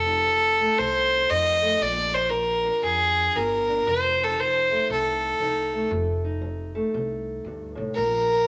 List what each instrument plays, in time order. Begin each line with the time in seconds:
Already playing: upright bass F1, steel-string acoustic guitar F2, fiddle A4
0.06 steel-string acoustic guitar D#4
0.26 steel-string acoustic guitar F3
0.59 steel-string acoustic guitar A3
0.79 upright bass C2, steel-string acoustic guitar C3, fiddle C5
1.30 upright bass F2, steel-string acoustic guitar F3 D#4, fiddle D#5
1.62 steel-string acoustic guitar A3
1.79 upright bass A#1, steel-string acoustic guitar A#2, fiddle D5
2.13 steel-string acoustic guitar F4, fiddle C5
2.30 steel-string acoustic guitar F3, fiddle A#4
2.64 steel-string acoustic guitar D4
2.82 upright bass F2, steel-string acoustic guitar F3, fiddle G#4
3.35 upright bass G1, steel-string acoustic guitar F3 F4, fiddle A#4
3.69 steel-string acoustic guitar D4
3.86 upright bass F1, steel-string acoustic guitar F2, fiddle C5
4.17 steel-string acoustic guitar C4
4.24 fiddle A4
4.29 steel-string acoustic guitar D#4
4.37 steel-string acoustic guitar F3, fiddle C5
4.70 steel-string acoustic guitar A3
4.89 upright bass C2, steel-string acoustic guitar C3, fiddle A4
5.40 upright bass C2, steel-string acoustic guitar F3 D#4
5.74 steel-string acoustic guitar A3
5.91 upright bass F1, steel-string acoustic guitar F2
6.24 steel-string acoustic guitar D#4
6.41 steel-string acoustic guitar F3
6.75 steel-string acoustic guitar A3
6.94 upright bass C2, steel-string acoustic guitar C3
7.44 upright bass D2, steel-string acoustic guitar G2
7.75 upright bass C2, steel-string acoustic guitar A2
7.95 upright bass A#1, steel-string acoustic guitar A#2, fiddle A#4
8.30 steel-string acoustic guitar F4